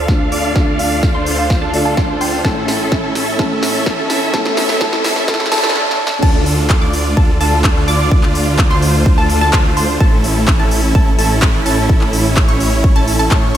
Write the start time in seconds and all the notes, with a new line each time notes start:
Already playing: D2 D3 A3 D4 F4 A4 F5 A5, riser
0.08 D3 A3 D4 F4 A4, kick, snare
0.32 D2 D4 F4 D5 D6, open hi-hat
0.54 D3 A3 D4 F4 A4, kick, snare
0.79 F5, open hi-hat
1.03 kick, snare
1.15 D2 D4 F4 C5 C6
1.26 open hi-hat
1.38 F5
1.50 kick, snare
1.62 D2 D4 F4 A4 A5
1.73 D3 A3 D4 F4 D5, open hi-hat
1.85 D2 D4 F4 A4 A5
1.97 D2 D4 F4 C5 C6, kick, snare
2.21 D2 D4 F4 C5 G5 C6, open hi-hat
2.33 G5
2.43 A1 A2 A3 C#4 E4 A4 E5 A5, kick, snare
2.68 snare, open hi-hat
2.92 kick, snare
3.04 A1 C#4 E4 A4 A5
3.15 snare, open hi-hat
3.38 A1 A2 A3 C#4 E4 A4 A5, kick, snare
3.63 snare, open hi-hat
3.86 kick, snare
3.98 A1 C#4 E4 A4 A5
4.10 snare, open hi-hat
4.32 A1 A2 A3 C#4 E4 A4 A5, kick, snare
4.45 snare
4.57 snare, open hi-hat
4.69 snare
4.80 A1 A2 A3 C#4 E4 A4 A5, kick, snare
4.93 snare
5.04 snare, open hi-hat
5.16 snare
5.27 A1 A2 A3 C#4 E4 A4 A5, kick, snare, swell
5.34 snare
5.40 snare
5.46 snare
5.51 A1 A2 A3 C#4 E4 A4 A5, snare, open hi-hat
5.58 snare
5.63 snare
5.69 snare
5.75 snare
5.91 snare
6.07 snare
6.23 D2 D3 A3 D4 F4 A4 A5, kick, crash
6.46 open hi-hat
6.70 kick, clap
6.81 D2 D4 F4 D5 D6
6.93 open hi-hat
7.17 D2 D4 F4 A4 A5, kick
7.41 D2 D4 F4 A4 A5, open hi-hat
7.64 kick, clap
7.88 D2 D4 F4 D5 D6, open hi-hat
8.12 kick
8.23 clap
8.35 open hi-hat
8.59 kick, clap
8.70 D2 D4 F4 C5 C6
8.82 open hi-hat
9.06 kick
9.18 D2 D4 F4 A4 A5
9.30 open hi-hat
9.41 D2 D4 F4 A4 A5
9.53 D2 D4 F4 C5 C6, kick, clap
9.77 D2 D4 F4 C5 C6, open hi-hat
10.00 A1 C#4 E4 A4 A5, kick
10.24 open hi-hat
10.48 kick, clap
10.59 A1 C#4 E4 A4 A5
10.71 open hi-hat
10.95 A1 C#4 E4 A4 A5, kick
11.19 A1 C#4 E4 A4 A5, open hi-hat
11.42 kick, clap
11.66 A1 C#4 E4 A4 A5, open hi-hat
11.89 kick
12.01 clap
12.13 open hi-hat
12.37 kick, clap
12.48 A1 C#4 E4 C#5 C#6
12.60 open hi-hat
12.84 kick
12.96 A1 C#4 E4 A4 A5
13.08 open hi-hat
13.19 A1 C#4 E4 A4 A5
13.31 A2 C#4 E4 C#5 C#6, kick, clap